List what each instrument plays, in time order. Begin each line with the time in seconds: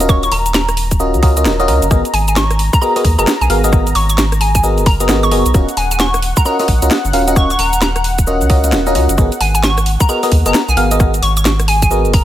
Already playing: sub bass D#1, analog synth pad A#5
0.00 fm electric piano C#4 F4 F#4 A#4 D#5, closed hi-hat, shaker
0.09 fm electric piano C#4 D#5, synth pluck C#6, kick, cross-stick, shaker
0.23 synth pluck C#6, closed hi-hat, shaker
0.32 sub bass D#1, synth pluck A#5, open hi-hat
0.46 closed hi-hat, shaker
0.54 synth pluck A#5, snare, shaker
0.69 cross-stick, closed hi-hat, shaker
0.77 open hi-hat
0.91 kick, closed hi-hat, shaker
1.00 fm electric piano C#4 F4 F#4 A#4 D#5, shaker
1.14 sub bass C#2, closed hi-hat, shaker
1.23 fm electric piano C#4 F4 F#4 A#4 D#5, kick, open hi-hat
1.37 fm electric piano C#4 F4 F#4 A#4 D#5, closed hi-hat, shaker
1.45 sub bass D#1, snare, shaker
1.60 fm electric piano C#4 F4 F#4 A#4 D#5, closed hi-hat, shaker
1.68 sub bass C#2, fm electric piano C#4 F4 F#4 A#4 D#5, open hi-hat
1.82 sub bass F#1, closed hi-hat, shaker
1.91 sub bass G#1, fm electric piano B3 F#4 G#4 A#4 D#5, kick, cross-stick, shaker
2.05 closed hi-hat, shaker
2.14 sub bass G#1, synth pluck G#5, open hi-hat
2.28 synth pluck G#5, closed hi-hat, shaker
2.36 synth pluck C#6, snare, shaker
2.51 cross-stick, closed hi-hat, shaker
2.59 open hi-hat
2.73 synth pluck A#5, kick, closed hi-hat, shaker
2.82 fm electric piano B3 F#4 G#4 A#4 D#5, synth pluck A#5, shaker
2.96 fm electric piano B3 F#4 G#4 A#4 D#5, open hi-hat, shaker
3.04 sub bass D#2, kick, open hi-hat
3.18 sub bass F#1, fm electric piano B3 F#4 G#4 A#4 D#5, synth pluck A#5, closed hi-hat, shaker
3.27 snare, shaker
3.41 sub bass B1, synth pluck G#5, closed hi-hat, shaker
3.50 sub bass G#1, fm electric piano B3 F#4 G#4 A#4 F5, open hi-hat
3.64 fm electric piano B3 F#4 G#4 A#4 D#5, closed hi-hat, shaker
3.73 fm electric piano B3 G#4 A#4 D#5, kick, cross-stick, shaker
3.87 closed hi-hat, shaker
3.95 sub bass G#1, synth pluck C#6, open hi-hat
4.09 synth pluck C#6, closed hi-hat, shaker
4.18 snare, shaker
4.32 cross-stick, closed hi-hat, shaker
4.41 synth pluck G#5, open hi-hat
4.55 synth pluck G#5, kick, closed hi-hat, shaker
4.63 fm electric piano B3 F#4 G#4 A#4 D#5, shaker
4.78 sub bass F#1, closed hi-hat, shaker
4.86 synth pluck A#5, kick, open hi-hat
5.00 fm electric piano B3 F#4 G#4 A#4 D#5, closed hi-hat, shaker
5.09 sub bass G#1, fm electric piano B3 F#4 G#4 A#4 D#5, snare, shaker
5.23 synth pluck C#6, closed hi-hat, shaker
5.32 sub bass F#1, fm electric piano B3 F#4 G#4 A#4 D#5, open hi-hat
5.46 sub bass B1, closed hi-hat, shaker
5.54 sub bass D#1, fm electric piano C#4 F4 F#4 A#4 D#5, analog synth pad F#5, kick, cross-stick, shaker
5.69 closed hi-hat, shaker
5.77 sub bass D#1, synth pluck G#5, open hi-hat
5.91 synth pluck G#5, closed hi-hat, shaker
6.00 synth pluck C#6, snare, shaker
6.14 cross-stick, closed hi-hat, shaker
6.22 open hi-hat
6.37 synth pluck A#5, kick, closed hi-hat, shaker
6.45 fm electric piano C#4 F4 F#4 A#4 D#5, synth pluck A#5, shaker
6.59 fm electric piano C#4 F4 F#4 A#4 D#5, open hi-hat, shaker
6.68 sub bass A#1, kick, open hi-hat
6.82 sub bass C#2, fm electric piano C#4 F4 F#4 A#4 D#5, closed hi-hat, shaker
6.91 snare, shaker
7.05 sub bass F#1, closed hi-hat, shaker
7.13 sub bass D#1, fm electric piano C#4 F4 F#4 A#4 F5, open hi-hat
7.28 fm electric piano C#4 F4 F#4 A#4 D#5, closed hi-hat, shaker
7.36 fm electric piano C#4 F4 F#4 A#4 D#5, synth pluck C#6, kick, cross-stick, shaker
7.50 synth pluck C#6, closed hi-hat, shaker
7.59 sub bass D#1, synth pluck A#5, open hi-hat
7.73 closed hi-hat, shaker
7.82 synth pluck A#5, snare, shaker
7.96 cross-stick, closed hi-hat, shaker
8.04 open hi-hat
8.18 kick, closed hi-hat, shaker
8.27 fm electric piano C#4 F4 F#4 A#4 D#5, shaker
8.41 sub bass C#2, closed hi-hat, shaker
8.50 fm electric piano C#4 F4 F#4 A#4 D#5, kick, open hi-hat
8.64 fm electric piano C#4 F4 F#4 A#4 D#5, closed hi-hat, shaker
8.72 sub bass D#1, snare, shaker
8.87 fm electric piano C#4 F4 F#4 A#4 D#5, closed hi-hat, shaker
8.95 sub bass C#2, fm electric piano C#4 F4 F#4 A#4 D#5, open hi-hat
9.09 sub bass F#1, closed hi-hat, shaker
9.18 sub bass G#1, fm electric piano B3 F#4 G#4 A#4 D#5, kick, cross-stick, shaker
9.32 closed hi-hat, shaker
9.41 sub bass G#1, synth pluck G#5, open hi-hat
9.55 synth pluck G#5, closed hi-hat, shaker
9.63 synth pluck C#6, snare, shaker
9.78 cross-stick, closed hi-hat, shaker
9.86 open hi-hat
10.00 synth pluck A#5, kick, closed hi-hat, shaker
10.09 fm electric piano B3 F#4 G#4 A#4 D#5, synth pluck A#5, shaker
10.23 fm electric piano B3 F#4 G#4 A#4 D#5, open hi-hat, shaker
10.32 sub bass D#2, kick, open hi-hat
10.46 sub bass F#1, fm electric piano B3 F#4 G#4 A#4 D#5, synth pluck A#5, closed hi-hat, shaker
10.54 snare, shaker
10.68 sub bass B1, synth pluck G#5, closed hi-hat, shaker
10.77 sub bass G#1, fm electric piano B3 F#4 G#4 A#4 F5, open hi-hat
10.91 fm electric piano B3 F#4 G#4 A#4 D#5, closed hi-hat, shaker
11.00 fm electric piano B3 F#4 G#4 A#4 D#5, kick, cross-stick, shaker
11.14 closed hi-hat, shaker
11.22 sub bass G#1, synth pluck C#6, open hi-hat
11.37 synth pluck C#6, closed hi-hat, shaker
11.45 snare, shaker
11.60 cross-stick, closed hi-hat, shaker
11.68 synth pluck G#5, open hi-hat
11.82 synth pluck G#5, kick, closed hi-hat, shaker
11.91 fm electric piano B3 F#4 G#4 A#4 D#5, shaker
12.05 sub bass F#1, closed hi-hat, shaker
12.13 synth pluck A#5, kick, open hi-hat